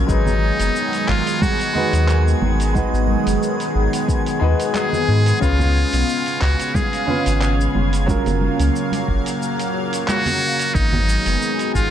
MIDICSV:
0, 0, Header, 1, 7, 480
1, 0, Start_track
1, 0, Tempo, 666667
1, 58, Time_signature, 4, 2, 24, 8
1, 8571, End_track
2, 0, Start_track
2, 0, Title_t, "Synth texture"
2, 0, Program_c, 0, 99
2, 0, Note_on_c, 0, 92, 78
2, 7727, Note_off_c, 0, 92, 0
2, 7736, Note_on_c, 0, 92, 82
2, 8571, Note_off_c, 0, 92, 0
2, 8571, End_track
3, 0, Start_track
3, 0, Title_t, "Muted trumpet"
3, 0, Program_c, 1, 59
3, 64, Note_on_c, 1, 63, 91
3, 782, Note_on_c, 1, 65, 94
3, 793, Note_off_c, 1, 63, 0
3, 1023, Note_on_c, 1, 66, 97
3, 1034, Note_off_c, 1, 65, 0
3, 1741, Note_off_c, 1, 66, 0
3, 3423, Note_on_c, 1, 68, 100
3, 3872, Note_off_c, 1, 68, 0
3, 3903, Note_on_c, 1, 65, 108
3, 4618, Note_on_c, 1, 66, 93
3, 4629, Note_off_c, 1, 65, 0
3, 4860, Note_on_c, 1, 68, 86
3, 4871, Note_off_c, 1, 66, 0
3, 5579, Note_off_c, 1, 68, 0
3, 7260, Note_on_c, 1, 66, 112
3, 7736, Note_on_c, 1, 63, 101
3, 7746, Note_off_c, 1, 66, 0
3, 8456, Note_off_c, 1, 63, 0
3, 8460, Note_on_c, 1, 65, 95
3, 8571, Note_off_c, 1, 65, 0
3, 8571, End_track
4, 0, Start_track
4, 0, Title_t, "Grand piano"
4, 0, Program_c, 2, 0
4, 0, Control_c, 2, 64, 127
4, 48, Note_on_c, 2, 56, 68
4, 57, Note_on_c, 2, 63, 60
4, 66, Control_c, 2, 64, 0
4, 67, Note_on_c, 2, 54, 61
4, 76, Note_on_c, 2, 71, 73
4, 212, Control_c, 2, 64, 127
4, 1227, Note_off_c, 2, 56, 0
4, 1232, Note_off_c, 2, 63, 0
4, 1237, Note_off_c, 2, 54, 0
4, 1241, Note_off_c, 2, 71, 0
4, 1247, Note_on_c, 2, 56, 81
4, 1257, Note_on_c, 2, 63, 70
4, 1266, Note_on_c, 2, 66, 73
4, 1276, Note_on_c, 2, 71, 87
4, 1947, Note_off_c, 2, 56, 0
4, 1952, Note_off_c, 2, 63, 0
4, 1956, Note_off_c, 2, 66, 0
4, 1961, Note_off_c, 2, 71, 0
4, 1967, Note_on_c, 2, 56, 78
4, 1977, Note_on_c, 2, 63, 73
4, 1985, Note_on_c, 2, 66, 71
4, 1996, Note_on_c, 2, 71, 88
4, 3147, Note_off_c, 2, 56, 0
4, 3152, Note_off_c, 2, 63, 0
4, 3156, Note_off_c, 2, 66, 0
4, 3161, Note_off_c, 2, 71, 0
4, 3166, Note_on_c, 2, 56, 89
4, 3174, Note_on_c, 2, 63, 79
4, 3183, Note_on_c, 2, 66, 74
4, 3193, Note_on_c, 2, 71, 94
4, 3866, Note_off_c, 2, 56, 0
4, 3870, Note_off_c, 2, 63, 0
4, 3875, Note_off_c, 2, 66, 0
4, 3880, Note_off_c, 2, 71, 0
4, 3885, Note_on_c, 2, 49, 71
4, 3894, Note_on_c, 2, 61, 63
4, 3903, Note_on_c, 2, 77, 64
4, 3910, Control_c, 2, 64, 0
4, 3912, Note_on_c, 2, 71, 76
4, 4037, Control_c, 2, 64, 127
4, 5066, Note_off_c, 2, 49, 0
4, 5070, Note_off_c, 2, 61, 0
4, 5075, Note_off_c, 2, 77, 0
4, 5079, Note_off_c, 2, 71, 0
4, 5084, Note_on_c, 2, 49, 83
4, 5092, Note_on_c, 2, 61, 74
4, 5102, Note_on_c, 2, 65, 76
4, 5111, Note_on_c, 2, 71, 92
4, 5785, Note_off_c, 2, 49, 0
4, 5789, Note_off_c, 2, 61, 0
4, 5794, Note_off_c, 2, 65, 0
4, 5799, Note_off_c, 2, 71, 0
4, 5804, Note_on_c, 2, 54, 82
4, 5814, Note_on_c, 2, 61, 73
4, 5824, Note_on_c, 2, 65, 76
4, 5828, Control_c, 2, 64, 0
4, 5833, Note_on_c, 2, 70, 89
4, 5938, Control_c, 2, 64, 127
4, 6985, Note_off_c, 2, 54, 0
4, 6990, Note_off_c, 2, 61, 0
4, 6995, Note_off_c, 2, 65, 0
4, 7000, Note_off_c, 2, 70, 0
4, 7748, Control_c, 2, 64, 0
4, 8571, End_track
5, 0, Start_track
5, 0, Title_t, "Analog synth pad"
5, 0, Program_c, 3, 89
5, 0, Note_on_c, 3, 54, 76
5, 59, Note_on_c, 3, 51, 86
5, 59, Note_on_c, 3, 59, 79
5, 59, Note_on_c, 3, 68, 100
5, 60, Note_on_c, 3, 56, 78
5, 3870, Note_off_c, 3, 51, 0
5, 3870, Note_off_c, 3, 68, 0
5, 3871, Note_off_c, 3, 54, 0
5, 3899, Note_on_c, 3, 49, 85
5, 3899, Note_on_c, 3, 77, 99
5, 5790, Note_off_c, 3, 59, 0
5, 5791, Note_off_c, 3, 56, 0
5, 5800, Note_off_c, 3, 77, 0
5, 5815, Note_on_c, 3, 77, 99
5, 5817, Note_on_c, 3, 54, 79
5, 5817, Note_on_c, 3, 58, 77
5, 7710, Note_off_c, 3, 49, 0
5, 7718, Note_off_c, 3, 58, 0
5, 7718, Note_off_c, 3, 77, 0
5, 7719, Note_off_c, 3, 54, 0
5, 7738, Note_on_c, 3, 54, 79
5, 7738, Note_on_c, 3, 56, 79
5, 7738, Note_on_c, 3, 59, 81
5, 7738, Note_on_c, 3, 68, 96
5, 7739, Note_on_c, 3, 51, 84
5, 8571, Note_off_c, 3, 51, 0
5, 8571, Note_off_c, 3, 54, 0
5, 8571, Note_off_c, 3, 56, 0
5, 8571, Note_off_c, 3, 59, 0
5, 8571, Note_off_c, 3, 68, 0
5, 8571, End_track
6, 0, Start_track
6, 0, Title_t, "Sub bass"
6, 0, Program_c, 4, 38
6, 62, Note_on_c, 4, 32, 102
6, 371, Note_off_c, 4, 32, 0
6, 429, Note_on_c, 4, 30, 82
6, 507, Note_off_c, 4, 30, 0
6, 782, Note_on_c, 4, 32, 107
6, 874, Note_off_c, 4, 32, 0
6, 1390, Note_on_c, 4, 39, 72
6, 1688, Note_off_c, 4, 39, 0
6, 1741, Note_on_c, 4, 32, 80
6, 2050, Note_off_c, 4, 32, 0
6, 2112, Note_on_c, 4, 32, 99
6, 2275, Note_off_c, 4, 32, 0
6, 2352, Note_on_c, 4, 30, 86
6, 2428, Note_off_c, 4, 30, 0
6, 2703, Note_on_c, 4, 32, 102
6, 2794, Note_off_c, 4, 32, 0
6, 3180, Note_on_c, 4, 39, 99
6, 3273, Note_off_c, 4, 39, 0
6, 3660, Note_on_c, 4, 44, 98
6, 3837, Note_off_c, 4, 44, 0
6, 3901, Note_on_c, 4, 37, 100
6, 4210, Note_off_c, 4, 37, 0
6, 4272, Note_on_c, 4, 35, 85
6, 4348, Note_off_c, 4, 35, 0
6, 4620, Note_on_c, 4, 37, 108
6, 4713, Note_off_c, 4, 37, 0
6, 5231, Note_on_c, 4, 32, 75
6, 5529, Note_off_c, 4, 32, 0
6, 5580, Note_on_c, 4, 30, 79
6, 5890, Note_off_c, 4, 30, 0
6, 5950, Note_on_c, 4, 30, 97
6, 6114, Note_off_c, 4, 30, 0
6, 6188, Note_on_c, 4, 37, 90
6, 6266, Note_off_c, 4, 37, 0
6, 6540, Note_on_c, 4, 30, 102
6, 6633, Note_off_c, 4, 30, 0
6, 7740, Note_on_c, 4, 32, 105
6, 8050, Note_off_c, 4, 32, 0
6, 8109, Note_on_c, 4, 30, 82
6, 8187, Note_off_c, 4, 30, 0
6, 8460, Note_on_c, 4, 32, 106
6, 8553, Note_off_c, 4, 32, 0
6, 8571, End_track
7, 0, Start_track
7, 0, Title_t, "Drums"
7, 62, Note_on_c, 9, 36, 107
7, 65, Note_on_c, 9, 69, 49
7, 134, Note_off_c, 9, 36, 0
7, 137, Note_off_c, 9, 69, 0
7, 190, Note_on_c, 9, 64, 72
7, 196, Note_on_c, 9, 69, 28
7, 262, Note_off_c, 9, 64, 0
7, 268, Note_off_c, 9, 69, 0
7, 429, Note_on_c, 9, 46, 51
7, 436, Note_on_c, 9, 69, 61
7, 501, Note_off_c, 9, 46, 0
7, 508, Note_off_c, 9, 69, 0
7, 545, Note_on_c, 9, 69, 48
7, 617, Note_off_c, 9, 69, 0
7, 670, Note_on_c, 9, 46, 43
7, 677, Note_on_c, 9, 69, 32
7, 742, Note_off_c, 9, 46, 0
7, 749, Note_off_c, 9, 69, 0
7, 780, Note_on_c, 9, 39, 69
7, 782, Note_on_c, 9, 36, 56
7, 852, Note_off_c, 9, 39, 0
7, 854, Note_off_c, 9, 36, 0
7, 912, Note_on_c, 9, 46, 49
7, 919, Note_on_c, 9, 69, 59
7, 984, Note_off_c, 9, 46, 0
7, 991, Note_off_c, 9, 69, 0
7, 1021, Note_on_c, 9, 63, 89
7, 1022, Note_on_c, 9, 36, 110
7, 1027, Note_on_c, 9, 69, 55
7, 1093, Note_off_c, 9, 63, 0
7, 1094, Note_off_c, 9, 36, 0
7, 1099, Note_off_c, 9, 69, 0
7, 1150, Note_on_c, 9, 46, 40
7, 1157, Note_on_c, 9, 69, 32
7, 1222, Note_off_c, 9, 46, 0
7, 1229, Note_off_c, 9, 69, 0
7, 1263, Note_on_c, 9, 64, 66
7, 1335, Note_off_c, 9, 64, 0
7, 1391, Note_on_c, 9, 46, 48
7, 1398, Note_on_c, 9, 69, 66
7, 1463, Note_off_c, 9, 46, 0
7, 1470, Note_off_c, 9, 69, 0
7, 1500, Note_on_c, 9, 39, 65
7, 1507, Note_on_c, 9, 69, 47
7, 1572, Note_off_c, 9, 39, 0
7, 1579, Note_off_c, 9, 69, 0
7, 1640, Note_on_c, 9, 69, 33
7, 1712, Note_off_c, 9, 69, 0
7, 1741, Note_on_c, 9, 64, 78
7, 1742, Note_on_c, 9, 63, 64
7, 1813, Note_off_c, 9, 64, 0
7, 1814, Note_off_c, 9, 63, 0
7, 1871, Note_on_c, 9, 46, 46
7, 1878, Note_on_c, 9, 69, 59
7, 1943, Note_off_c, 9, 46, 0
7, 1950, Note_off_c, 9, 69, 0
7, 1978, Note_on_c, 9, 63, 73
7, 1982, Note_on_c, 9, 36, 114
7, 1988, Note_on_c, 9, 69, 51
7, 2050, Note_off_c, 9, 63, 0
7, 2054, Note_off_c, 9, 36, 0
7, 2060, Note_off_c, 9, 69, 0
7, 2120, Note_on_c, 9, 69, 29
7, 2192, Note_off_c, 9, 69, 0
7, 2216, Note_on_c, 9, 63, 57
7, 2288, Note_off_c, 9, 63, 0
7, 2353, Note_on_c, 9, 46, 50
7, 2360, Note_on_c, 9, 69, 60
7, 2425, Note_off_c, 9, 46, 0
7, 2432, Note_off_c, 9, 69, 0
7, 2467, Note_on_c, 9, 69, 47
7, 2539, Note_off_c, 9, 69, 0
7, 2593, Note_on_c, 9, 46, 43
7, 2600, Note_on_c, 9, 69, 32
7, 2665, Note_off_c, 9, 46, 0
7, 2672, Note_off_c, 9, 69, 0
7, 2831, Note_on_c, 9, 46, 50
7, 2838, Note_on_c, 9, 69, 62
7, 2903, Note_off_c, 9, 46, 0
7, 2910, Note_off_c, 9, 69, 0
7, 2941, Note_on_c, 9, 36, 108
7, 2946, Note_on_c, 9, 69, 54
7, 3013, Note_off_c, 9, 36, 0
7, 3018, Note_off_c, 9, 69, 0
7, 3071, Note_on_c, 9, 46, 43
7, 3078, Note_on_c, 9, 69, 29
7, 3143, Note_off_c, 9, 46, 0
7, 3150, Note_off_c, 9, 69, 0
7, 3310, Note_on_c, 9, 46, 51
7, 3317, Note_on_c, 9, 69, 58
7, 3382, Note_off_c, 9, 46, 0
7, 3389, Note_off_c, 9, 69, 0
7, 3416, Note_on_c, 9, 63, 50
7, 3418, Note_on_c, 9, 39, 66
7, 3425, Note_on_c, 9, 69, 47
7, 3488, Note_off_c, 9, 63, 0
7, 3490, Note_off_c, 9, 39, 0
7, 3497, Note_off_c, 9, 69, 0
7, 3550, Note_on_c, 9, 64, 70
7, 3557, Note_on_c, 9, 69, 32
7, 3622, Note_off_c, 9, 64, 0
7, 3629, Note_off_c, 9, 69, 0
7, 3789, Note_on_c, 9, 46, 51
7, 3796, Note_on_c, 9, 69, 60
7, 3861, Note_off_c, 9, 46, 0
7, 3868, Note_off_c, 9, 69, 0
7, 3901, Note_on_c, 9, 36, 112
7, 3905, Note_on_c, 9, 69, 50
7, 3973, Note_off_c, 9, 36, 0
7, 3977, Note_off_c, 9, 69, 0
7, 4027, Note_on_c, 9, 64, 75
7, 4037, Note_on_c, 9, 69, 31
7, 4099, Note_off_c, 9, 64, 0
7, 4109, Note_off_c, 9, 69, 0
7, 4269, Note_on_c, 9, 46, 55
7, 4276, Note_on_c, 9, 69, 60
7, 4341, Note_off_c, 9, 46, 0
7, 4348, Note_off_c, 9, 69, 0
7, 4385, Note_on_c, 9, 69, 47
7, 4457, Note_off_c, 9, 69, 0
7, 4508, Note_on_c, 9, 46, 45
7, 4515, Note_on_c, 9, 69, 32
7, 4580, Note_off_c, 9, 46, 0
7, 4587, Note_off_c, 9, 69, 0
7, 4618, Note_on_c, 9, 39, 75
7, 4620, Note_on_c, 9, 36, 55
7, 4690, Note_off_c, 9, 39, 0
7, 4692, Note_off_c, 9, 36, 0
7, 4749, Note_on_c, 9, 46, 52
7, 4756, Note_on_c, 9, 69, 59
7, 4821, Note_off_c, 9, 46, 0
7, 4828, Note_off_c, 9, 69, 0
7, 4858, Note_on_c, 9, 63, 89
7, 4860, Note_on_c, 9, 36, 105
7, 4864, Note_on_c, 9, 69, 55
7, 4930, Note_off_c, 9, 63, 0
7, 4932, Note_off_c, 9, 36, 0
7, 4936, Note_off_c, 9, 69, 0
7, 4990, Note_on_c, 9, 46, 43
7, 4997, Note_on_c, 9, 69, 30
7, 5062, Note_off_c, 9, 46, 0
7, 5069, Note_off_c, 9, 69, 0
7, 5097, Note_on_c, 9, 64, 76
7, 5169, Note_off_c, 9, 64, 0
7, 5228, Note_on_c, 9, 46, 54
7, 5235, Note_on_c, 9, 69, 60
7, 5300, Note_off_c, 9, 46, 0
7, 5307, Note_off_c, 9, 69, 0
7, 5338, Note_on_c, 9, 39, 65
7, 5345, Note_on_c, 9, 69, 46
7, 5410, Note_off_c, 9, 39, 0
7, 5417, Note_off_c, 9, 69, 0
7, 5477, Note_on_c, 9, 69, 33
7, 5549, Note_off_c, 9, 69, 0
7, 5578, Note_on_c, 9, 63, 56
7, 5581, Note_on_c, 9, 64, 69
7, 5650, Note_off_c, 9, 63, 0
7, 5653, Note_off_c, 9, 64, 0
7, 5709, Note_on_c, 9, 46, 53
7, 5716, Note_on_c, 9, 69, 56
7, 5781, Note_off_c, 9, 46, 0
7, 5788, Note_off_c, 9, 69, 0
7, 5817, Note_on_c, 9, 63, 80
7, 5820, Note_on_c, 9, 36, 110
7, 5825, Note_on_c, 9, 69, 53
7, 5889, Note_off_c, 9, 63, 0
7, 5892, Note_off_c, 9, 36, 0
7, 5897, Note_off_c, 9, 69, 0
7, 5949, Note_on_c, 9, 46, 30
7, 5951, Note_on_c, 9, 64, 82
7, 5956, Note_on_c, 9, 69, 30
7, 6021, Note_off_c, 9, 46, 0
7, 6023, Note_off_c, 9, 64, 0
7, 6028, Note_off_c, 9, 69, 0
7, 6058, Note_on_c, 9, 63, 58
7, 6130, Note_off_c, 9, 63, 0
7, 6189, Note_on_c, 9, 46, 56
7, 6196, Note_on_c, 9, 69, 57
7, 6261, Note_off_c, 9, 46, 0
7, 6268, Note_off_c, 9, 69, 0
7, 6306, Note_on_c, 9, 69, 52
7, 6378, Note_off_c, 9, 69, 0
7, 6423, Note_on_c, 9, 63, 58
7, 6429, Note_on_c, 9, 46, 48
7, 6436, Note_on_c, 9, 69, 32
7, 6495, Note_off_c, 9, 63, 0
7, 6501, Note_off_c, 9, 46, 0
7, 6508, Note_off_c, 9, 69, 0
7, 6539, Note_on_c, 9, 36, 53
7, 6611, Note_off_c, 9, 36, 0
7, 6669, Note_on_c, 9, 46, 56
7, 6676, Note_on_c, 9, 69, 60
7, 6741, Note_off_c, 9, 46, 0
7, 6748, Note_off_c, 9, 69, 0
7, 6784, Note_on_c, 9, 69, 52
7, 6856, Note_off_c, 9, 69, 0
7, 6908, Note_on_c, 9, 46, 44
7, 6915, Note_on_c, 9, 69, 32
7, 6980, Note_off_c, 9, 46, 0
7, 6987, Note_off_c, 9, 69, 0
7, 7149, Note_on_c, 9, 46, 56
7, 7156, Note_on_c, 9, 69, 66
7, 7221, Note_off_c, 9, 46, 0
7, 7228, Note_off_c, 9, 69, 0
7, 7257, Note_on_c, 9, 39, 65
7, 7263, Note_on_c, 9, 63, 63
7, 7264, Note_on_c, 9, 69, 49
7, 7329, Note_off_c, 9, 39, 0
7, 7335, Note_off_c, 9, 63, 0
7, 7336, Note_off_c, 9, 69, 0
7, 7387, Note_on_c, 9, 46, 34
7, 7388, Note_on_c, 9, 64, 71
7, 7395, Note_on_c, 9, 69, 32
7, 7459, Note_off_c, 9, 46, 0
7, 7460, Note_off_c, 9, 64, 0
7, 7467, Note_off_c, 9, 69, 0
7, 7629, Note_on_c, 9, 46, 55
7, 7636, Note_on_c, 9, 69, 58
7, 7701, Note_off_c, 9, 46, 0
7, 7708, Note_off_c, 9, 69, 0
7, 7740, Note_on_c, 9, 36, 115
7, 7744, Note_on_c, 9, 69, 41
7, 7812, Note_off_c, 9, 36, 0
7, 7816, Note_off_c, 9, 69, 0
7, 7867, Note_on_c, 9, 64, 81
7, 7939, Note_off_c, 9, 64, 0
7, 7984, Note_on_c, 9, 69, 69
7, 8055, Note_off_c, 9, 69, 0
7, 8108, Note_on_c, 9, 46, 54
7, 8115, Note_on_c, 9, 69, 30
7, 8180, Note_off_c, 9, 46, 0
7, 8187, Note_off_c, 9, 69, 0
7, 8223, Note_on_c, 9, 69, 42
7, 8295, Note_off_c, 9, 69, 0
7, 8347, Note_on_c, 9, 46, 47
7, 8354, Note_on_c, 9, 69, 33
7, 8419, Note_off_c, 9, 46, 0
7, 8426, Note_off_c, 9, 69, 0
7, 8460, Note_on_c, 9, 36, 60
7, 8463, Note_on_c, 9, 69, 68
7, 8532, Note_off_c, 9, 36, 0
7, 8535, Note_off_c, 9, 69, 0
7, 8571, End_track
0, 0, End_of_file